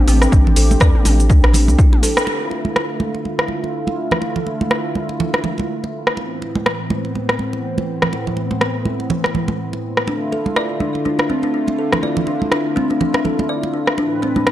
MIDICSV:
0, 0, Header, 1, 5, 480
1, 0, Start_track
1, 0, Tempo, 487805
1, 316, Time_signature, 4, 2, 24, 8
1, 14284, End_track
2, 0, Start_track
2, 0, Title_t, "Kalimba"
2, 0, Program_c, 0, 108
2, 77, Note_on_c, 0, 60, 98
2, 209, Note_off_c, 0, 60, 0
2, 317, Note_on_c, 0, 62, 82
2, 442, Note_off_c, 0, 62, 0
2, 558, Note_on_c, 0, 69, 75
2, 689, Note_off_c, 0, 69, 0
2, 797, Note_on_c, 0, 74, 102
2, 929, Note_off_c, 0, 74, 0
2, 1036, Note_on_c, 0, 62, 76
2, 1161, Note_off_c, 0, 62, 0
2, 1276, Note_on_c, 0, 62, 103
2, 1401, Note_off_c, 0, 62, 0
2, 1515, Note_on_c, 0, 62, 75
2, 1641, Note_off_c, 0, 62, 0
2, 1756, Note_on_c, 0, 64, 83
2, 1881, Note_off_c, 0, 64, 0
2, 1996, Note_on_c, 0, 69, 96
2, 2128, Note_off_c, 0, 69, 0
2, 9917, Note_on_c, 0, 62, 76
2, 10042, Note_off_c, 0, 62, 0
2, 10157, Note_on_c, 0, 69, 67
2, 10289, Note_off_c, 0, 69, 0
2, 10395, Note_on_c, 0, 74, 89
2, 10528, Note_off_c, 0, 74, 0
2, 10636, Note_on_c, 0, 62, 68
2, 10761, Note_off_c, 0, 62, 0
2, 10876, Note_on_c, 0, 62, 91
2, 11001, Note_off_c, 0, 62, 0
2, 11115, Note_on_c, 0, 60, 88
2, 11248, Note_off_c, 0, 60, 0
2, 11254, Note_on_c, 0, 62, 90
2, 11343, Note_off_c, 0, 62, 0
2, 11355, Note_on_c, 0, 62, 74
2, 11481, Note_off_c, 0, 62, 0
2, 11597, Note_on_c, 0, 69, 67
2, 11729, Note_off_c, 0, 69, 0
2, 11836, Note_on_c, 0, 74, 90
2, 11968, Note_off_c, 0, 74, 0
2, 12076, Note_on_c, 0, 62, 69
2, 12201, Note_off_c, 0, 62, 0
2, 12316, Note_on_c, 0, 62, 90
2, 12441, Note_off_c, 0, 62, 0
2, 12556, Note_on_c, 0, 60, 94
2, 12688, Note_off_c, 0, 60, 0
2, 12695, Note_on_c, 0, 62, 91
2, 12784, Note_off_c, 0, 62, 0
2, 12796, Note_on_c, 0, 62, 78
2, 12921, Note_off_c, 0, 62, 0
2, 13035, Note_on_c, 0, 69, 68
2, 13167, Note_off_c, 0, 69, 0
2, 13276, Note_on_c, 0, 74, 88
2, 13408, Note_off_c, 0, 74, 0
2, 13516, Note_on_c, 0, 62, 70
2, 13641, Note_off_c, 0, 62, 0
2, 13757, Note_on_c, 0, 62, 96
2, 13882, Note_off_c, 0, 62, 0
2, 13996, Note_on_c, 0, 60, 89
2, 14128, Note_off_c, 0, 60, 0
2, 14134, Note_on_c, 0, 62, 91
2, 14226, Note_off_c, 0, 62, 0
2, 14235, Note_on_c, 0, 62, 76
2, 14284, Note_off_c, 0, 62, 0
2, 14284, End_track
3, 0, Start_track
3, 0, Title_t, "Analog synth pad"
3, 0, Program_c, 1, 89
3, 0, Note_on_c, 1, 57, 73
3, 0, Note_on_c, 1, 60, 77
3, 0, Note_on_c, 1, 67, 89
3, 2195, Note_off_c, 1, 57, 0
3, 2199, Note_off_c, 1, 60, 0
3, 2199, Note_off_c, 1, 67, 0
3, 2235, Note_on_c, 1, 65, 85
3, 2236, Note_on_c, 1, 57, 70
3, 2237, Note_on_c, 1, 50, 76
3, 2237, Note_on_c, 1, 64, 70
3, 6037, Note_off_c, 1, 65, 0
3, 6038, Note_off_c, 1, 50, 0
3, 6038, Note_off_c, 1, 57, 0
3, 6038, Note_off_c, 1, 64, 0
3, 6075, Note_on_c, 1, 59, 71
3, 6075, Note_on_c, 1, 60, 85
3, 6076, Note_on_c, 1, 52, 72
3, 6077, Note_on_c, 1, 45, 76
3, 9877, Note_off_c, 1, 52, 0
3, 9877, Note_off_c, 1, 59, 0
3, 9877, Note_off_c, 1, 60, 0
3, 9878, Note_off_c, 1, 45, 0
3, 9915, Note_on_c, 1, 64, 68
3, 9916, Note_on_c, 1, 50, 75
3, 9916, Note_on_c, 1, 65, 83
3, 9917, Note_on_c, 1, 57, 71
3, 13717, Note_off_c, 1, 64, 0
3, 13718, Note_off_c, 1, 50, 0
3, 13718, Note_off_c, 1, 57, 0
3, 13718, Note_off_c, 1, 65, 0
3, 13753, Note_on_c, 1, 45, 76
3, 13753, Note_on_c, 1, 71, 71
3, 13754, Note_on_c, 1, 52, 70
3, 13754, Note_on_c, 1, 60, 87
3, 14284, Note_off_c, 1, 45, 0
3, 14284, Note_off_c, 1, 52, 0
3, 14284, Note_off_c, 1, 60, 0
3, 14284, Note_off_c, 1, 71, 0
3, 14284, End_track
4, 0, Start_track
4, 0, Title_t, "Analog synth bass"
4, 0, Program_c, 2, 38
4, 76, Note_on_c, 2, 33, 96
4, 263, Note_off_c, 2, 33, 0
4, 317, Note_on_c, 2, 33, 101
4, 504, Note_off_c, 2, 33, 0
4, 556, Note_on_c, 2, 33, 90
4, 743, Note_off_c, 2, 33, 0
4, 797, Note_on_c, 2, 40, 99
4, 899, Note_off_c, 2, 40, 0
4, 1038, Note_on_c, 2, 33, 90
4, 1278, Note_on_c, 2, 38, 99
4, 1293, Note_off_c, 2, 33, 0
4, 1415, Note_on_c, 2, 33, 78
4, 1430, Note_off_c, 2, 38, 0
4, 1654, Note_on_c, 2, 36, 102
4, 1669, Note_off_c, 2, 33, 0
4, 1729, Note_off_c, 2, 36, 0
4, 14284, End_track
5, 0, Start_track
5, 0, Title_t, "Drums"
5, 75, Note_on_c, 9, 46, 76
5, 75, Note_on_c, 9, 47, 80
5, 80, Note_on_c, 9, 82, 82
5, 173, Note_off_c, 9, 46, 0
5, 173, Note_off_c, 9, 47, 0
5, 178, Note_off_c, 9, 82, 0
5, 213, Note_on_c, 9, 37, 84
5, 219, Note_on_c, 9, 82, 49
5, 311, Note_off_c, 9, 37, 0
5, 317, Note_off_c, 9, 82, 0
5, 317, Note_on_c, 9, 36, 112
5, 320, Note_on_c, 9, 82, 37
5, 323, Note_on_c, 9, 62, 55
5, 416, Note_off_c, 9, 36, 0
5, 419, Note_off_c, 9, 82, 0
5, 422, Note_off_c, 9, 62, 0
5, 462, Note_on_c, 9, 64, 87
5, 554, Note_on_c, 9, 46, 91
5, 560, Note_off_c, 9, 64, 0
5, 560, Note_on_c, 9, 62, 39
5, 560, Note_on_c, 9, 82, 89
5, 653, Note_off_c, 9, 46, 0
5, 658, Note_off_c, 9, 62, 0
5, 658, Note_off_c, 9, 82, 0
5, 699, Note_on_c, 9, 63, 81
5, 700, Note_on_c, 9, 82, 51
5, 790, Note_on_c, 9, 62, 52
5, 796, Note_on_c, 9, 37, 90
5, 797, Note_off_c, 9, 63, 0
5, 797, Note_on_c, 9, 36, 100
5, 798, Note_off_c, 9, 82, 0
5, 802, Note_on_c, 9, 82, 38
5, 888, Note_off_c, 9, 62, 0
5, 895, Note_off_c, 9, 36, 0
5, 895, Note_off_c, 9, 37, 0
5, 900, Note_off_c, 9, 82, 0
5, 935, Note_on_c, 9, 47, 88
5, 1033, Note_off_c, 9, 47, 0
5, 1035, Note_on_c, 9, 46, 81
5, 1035, Note_on_c, 9, 47, 95
5, 1036, Note_on_c, 9, 63, 85
5, 1040, Note_on_c, 9, 82, 89
5, 1133, Note_off_c, 9, 46, 0
5, 1133, Note_off_c, 9, 47, 0
5, 1135, Note_off_c, 9, 63, 0
5, 1139, Note_off_c, 9, 82, 0
5, 1179, Note_on_c, 9, 62, 41
5, 1181, Note_on_c, 9, 82, 50
5, 1275, Note_on_c, 9, 64, 96
5, 1277, Note_on_c, 9, 36, 110
5, 1278, Note_off_c, 9, 62, 0
5, 1279, Note_off_c, 9, 82, 0
5, 1281, Note_on_c, 9, 82, 37
5, 1373, Note_off_c, 9, 64, 0
5, 1375, Note_off_c, 9, 36, 0
5, 1380, Note_off_c, 9, 82, 0
5, 1415, Note_on_c, 9, 37, 81
5, 1417, Note_on_c, 9, 62, 48
5, 1510, Note_on_c, 9, 64, 83
5, 1514, Note_off_c, 9, 37, 0
5, 1516, Note_off_c, 9, 62, 0
5, 1517, Note_on_c, 9, 63, 61
5, 1518, Note_on_c, 9, 46, 93
5, 1523, Note_on_c, 9, 82, 87
5, 1609, Note_off_c, 9, 64, 0
5, 1615, Note_off_c, 9, 63, 0
5, 1616, Note_off_c, 9, 46, 0
5, 1622, Note_off_c, 9, 82, 0
5, 1654, Note_on_c, 9, 63, 96
5, 1656, Note_on_c, 9, 62, 41
5, 1662, Note_on_c, 9, 82, 52
5, 1753, Note_off_c, 9, 63, 0
5, 1755, Note_off_c, 9, 62, 0
5, 1757, Note_on_c, 9, 36, 104
5, 1760, Note_off_c, 9, 82, 0
5, 1763, Note_on_c, 9, 82, 39
5, 1856, Note_off_c, 9, 36, 0
5, 1862, Note_off_c, 9, 82, 0
5, 1896, Note_on_c, 9, 47, 93
5, 1898, Note_on_c, 9, 62, 49
5, 1994, Note_off_c, 9, 47, 0
5, 1996, Note_off_c, 9, 62, 0
5, 1997, Note_on_c, 9, 46, 80
5, 2003, Note_on_c, 9, 82, 86
5, 2095, Note_off_c, 9, 46, 0
5, 2101, Note_off_c, 9, 82, 0
5, 2135, Note_on_c, 9, 37, 92
5, 2140, Note_on_c, 9, 82, 47
5, 2233, Note_off_c, 9, 37, 0
5, 2233, Note_on_c, 9, 62, 50
5, 2239, Note_off_c, 9, 82, 0
5, 2332, Note_off_c, 9, 62, 0
5, 2473, Note_on_c, 9, 62, 34
5, 2571, Note_off_c, 9, 62, 0
5, 2606, Note_on_c, 9, 63, 73
5, 2705, Note_off_c, 9, 63, 0
5, 2715, Note_on_c, 9, 37, 83
5, 2719, Note_on_c, 9, 62, 49
5, 2814, Note_off_c, 9, 37, 0
5, 2817, Note_off_c, 9, 62, 0
5, 2952, Note_on_c, 9, 63, 78
5, 3050, Note_off_c, 9, 63, 0
5, 3095, Note_on_c, 9, 62, 33
5, 3193, Note_off_c, 9, 62, 0
5, 3201, Note_on_c, 9, 63, 53
5, 3299, Note_off_c, 9, 63, 0
5, 3334, Note_on_c, 9, 62, 49
5, 3335, Note_on_c, 9, 37, 77
5, 3428, Note_on_c, 9, 63, 53
5, 3432, Note_off_c, 9, 62, 0
5, 3433, Note_off_c, 9, 37, 0
5, 3526, Note_off_c, 9, 63, 0
5, 3579, Note_on_c, 9, 62, 35
5, 3677, Note_off_c, 9, 62, 0
5, 3809, Note_on_c, 9, 63, 56
5, 3814, Note_on_c, 9, 62, 42
5, 3907, Note_off_c, 9, 63, 0
5, 3912, Note_off_c, 9, 62, 0
5, 4048, Note_on_c, 9, 64, 78
5, 4053, Note_on_c, 9, 37, 81
5, 4146, Note_off_c, 9, 64, 0
5, 4149, Note_on_c, 9, 62, 44
5, 4152, Note_off_c, 9, 37, 0
5, 4248, Note_off_c, 9, 62, 0
5, 4289, Note_on_c, 9, 64, 71
5, 4387, Note_off_c, 9, 64, 0
5, 4394, Note_on_c, 9, 62, 35
5, 4493, Note_off_c, 9, 62, 0
5, 4537, Note_on_c, 9, 63, 80
5, 4632, Note_on_c, 9, 62, 43
5, 4633, Note_on_c, 9, 37, 81
5, 4635, Note_off_c, 9, 63, 0
5, 4730, Note_off_c, 9, 62, 0
5, 4732, Note_off_c, 9, 37, 0
5, 4874, Note_on_c, 9, 63, 77
5, 4973, Note_off_c, 9, 63, 0
5, 5011, Note_on_c, 9, 62, 36
5, 5109, Note_off_c, 9, 62, 0
5, 5117, Note_on_c, 9, 64, 92
5, 5215, Note_off_c, 9, 64, 0
5, 5252, Note_on_c, 9, 62, 45
5, 5254, Note_on_c, 9, 37, 76
5, 5350, Note_on_c, 9, 64, 71
5, 5351, Note_off_c, 9, 62, 0
5, 5352, Note_off_c, 9, 37, 0
5, 5355, Note_on_c, 9, 63, 56
5, 5449, Note_off_c, 9, 64, 0
5, 5454, Note_off_c, 9, 63, 0
5, 5489, Note_on_c, 9, 62, 33
5, 5505, Note_on_c, 9, 63, 88
5, 5588, Note_off_c, 9, 62, 0
5, 5603, Note_off_c, 9, 63, 0
5, 5744, Note_on_c, 9, 62, 43
5, 5842, Note_off_c, 9, 62, 0
5, 5972, Note_on_c, 9, 37, 81
5, 6070, Note_off_c, 9, 37, 0
5, 6073, Note_on_c, 9, 62, 47
5, 6171, Note_off_c, 9, 62, 0
5, 6317, Note_on_c, 9, 62, 33
5, 6416, Note_off_c, 9, 62, 0
5, 6450, Note_on_c, 9, 63, 87
5, 6548, Note_off_c, 9, 63, 0
5, 6554, Note_on_c, 9, 37, 83
5, 6556, Note_on_c, 9, 62, 49
5, 6653, Note_off_c, 9, 37, 0
5, 6654, Note_off_c, 9, 62, 0
5, 6793, Note_on_c, 9, 63, 86
5, 6891, Note_off_c, 9, 63, 0
5, 6935, Note_on_c, 9, 62, 31
5, 7034, Note_off_c, 9, 62, 0
5, 7039, Note_on_c, 9, 63, 59
5, 7138, Note_off_c, 9, 63, 0
5, 7174, Note_on_c, 9, 37, 74
5, 7177, Note_on_c, 9, 62, 47
5, 7272, Note_off_c, 9, 37, 0
5, 7273, Note_on_c, 9, 63, 57
5, 7276, Note_off_c, 9, 62, 0
5, 7371, Note_off_c, 9, 63, 0
5, 7412, Note_on_c, 9, 62, 31
5, 7510, Note_off_c, 9, 62, 0
5, 7653, Note_on_c, 9, 63, 56
5, 7654, Note_on_c, 9, 62, 39
5, 7752, Note_off_c, 9, 62, 0
5, 7752, Note_off_c, 9, 63, 0
5, 7893, Note_on_c, 9, 37, 81
5, 7898, Note_on_c, 9, 64, 71
5, 7991, Note_off_c, 9, 37, 0
5, 7996, Note_off_c, 9, 64, 0
5, 7998, Note_on_c, 9, 62, 46
5, 8096, Note_off_c, 9, 62, 0
5, 8139, Note_on_c, 9, 64, 68
5, 8233, Note_on_c, 9, 62, 36
5, 8238, Note_off_c, 9, 64, 0
5, 8332, Note_off_c, 9, 62, 0
5, 8372, Note_on_c, 9, 63, 77
5, 8470, Note_off_c, 9, 63, 0
5, 8474, Note_on_c, 9, 37, 79
5, 8476, Note_on_c, 9, 62, 45
5, 8572, Note_off_c, 9, 37, 0
5, 8574, Note_off_c, 9, 62, 0
5, 8713, Note_on_c, 9, 63, 78
5, 8811, Note_off_c, 9, 63, 0
5, 8855, Note_on_c, 9, 62, 31
5, 8953, Note_off_c, 9, 62, 0
5, 8954, Note_on_c, 9, 64, 89
5, 9053, Note_off_c, 9, 64, 0
5, 9093, Note_on_c, 9, 37, 73
5, 9111, Note_on_c, 9, 62, 46
5, 9192, Note_off_c, 9, 37, 0
5, 9197, Note_on_c, 9, 63, 62
5, 9198, Note_on_c, 9, 64, 77
5, 9209, Note_off_c, 9, 62, 0
5, 9295, Note_off_c, 9, 63, 0
5, 9296, Note_off_c, 9, 64, 0
5, 9329, Note_on_c, 9, 62, 30
5, 9330, Note_on_c, 9, 63, 92
5, 9428, Note_off_c, 9, 62, 0
5, 9428, Note_off_c, 9, 63, 0
5, 9577, Note_on_c, 9, 62, 42
5, 9675, Note_off_c, 9, 62, 0
5, 9813, Note_on_c, 9, 37, 75
5, 9911, Note_off_c, 9, 37, 0
5, 9913, Note_on_c, 9, 62, 49
5, 10012, Note_off_c, 9, 62, 0
5, 10159, Note_on_c, 9, 62, 34
5, 10258, Note_off_c, 9, 62, 0
5, 10292, Note_on_c, 9, 63, 72
5, 10390, Note_off_c, 9, 63, 0
5, 10395, Note_on_c, 9, 37, 80
5, 10395, Note_on_c, 9, 62, 42
5, 10493, Note_off_c, 9, 37, 0
5, 10493, Note_off_c, 9, 62, 0
5, 10630, Note_on_c, 9, 63, 78
5, 10728, Note_off_c, 9, 63, 0
5, 10776, Note_on_c, 9, 62, 35
5, 10874, Note_off_c, 9, 62, 0
5, 10880, Note_on_c, 9, 63, 57
5, 10979, Note_off_c, 9, 63, 0
5, 11009, Note_on_c, 9, 62, 45
5, 11014, Note_on_c, 9, 37, 70
5, 11107, Note_off_c, 9, 62, 0
5, 11113, Note_off_c, 9, 37, 0
5, 11117, Note_on_c, 9, 63, 51
5, 11215, Note_off_c, 9, 63, 0
5, 11247, Note_on_c, 9, 62, 32
5, 11345, Note_off_c, 9, 62, 0
5, 11489, Note_on_c, 9, 63, 47
5, 11494, Note_on_c, 9, 62, 44
5, 11587, Note_off_c, 9, 63, 0
5, 11592, Note_off_c, 9, 62, 0
5, 11734, Note_on_c, 9, 37, 78
5, 11741, Note_on_c, 9, 64, 73
5, 11832, Note_off_c, 9, 37, 0
5, 11839, Note_off_c, 9, 64, 0
5, 11839, Note_on_c, 9, 62, 45
5, 11937, Note_off_c, 9, 62, 0
5, 11973, Note_on_c, 9, 64, 73
5, 12071, Note_off_c, 9, 64, 0
5, 12072, Note_on_c, 9, 62, 36
5, 12170, Note_off_c, 9, 62, 0
5, 12218, Note_on_c, 9, 63, 78
5, 12316, Note_on_c, 9, 37, 78
5, 12317, Note_off_c, 9, 63, 0
5, 12320, Note_on_c, 9, 62, 44
5, 12414, Note_off_c, 9, 37, 0
5, 12418, Note_off_c, 9, 62, 0
5, 12565, Note_on_c, 9, 63, 76
5, 12663, Note_off_c, 9, 63, 0
5, 12699, Note_on_c, 9, 62, 34
5, 12797, Note_off_c, 9, 62, 0
5, 12800, Note_on_c, 9, 64, 89
5, 12898, Note_off_c, 9, 64, 0
5, 12932, Note_on_c, 9, 62, 49
5, 12934, Note_on_c, 9, 37, 69
5, 13031, Note_off_c, 9, 62, 0
5, 13032, Note_off_c, 9, 37, 0
5, 13036, Note_on_c, 9, 63, 57
5, 13040, Note_on_c, 9, 64, 66
5, 13134, Note_off_c, 9, 63, 0
5, 13138, Note_off_c, 9, 64, 0
5, 13177, Note_on_c, 9, 63, 87
5, 13181, Note_on_c, 9, 62, 35
5, 13276, Note_off_c, 9, 63, 0
5, 13280, Note_off_c, 9, 62, 0
5, 13416, Note_on_c, 9, 62, 44
5, 13515, Note_off_c, 9, 62, 0
5, 13652, Note_on_c, 9, 37, 77
5, 13751, Note_off_c, 9, 37, 0
5, 13755, Note_on_c, 9, 62, 48
5, 13853, Note_off_c, 9, 62, 0
5, 14002, Note_on_c, 9, 62, 38
5, 14100, Note_off_c, 9, 62, 0
5, 14130, Note_on_c, 9, 63, 85
5, 14229, Note_off_c, 9, 63, 0
5, 14235, Note_on_c, 9, 37, 79
5, 14238, Note_on_c, 9, 62, 53
5, 14284, Note_off_c, 9, 37, 0
5, 14284, Note_off_c, 9, 62, 0
5, 14284, End_track
0, 0, End_of_file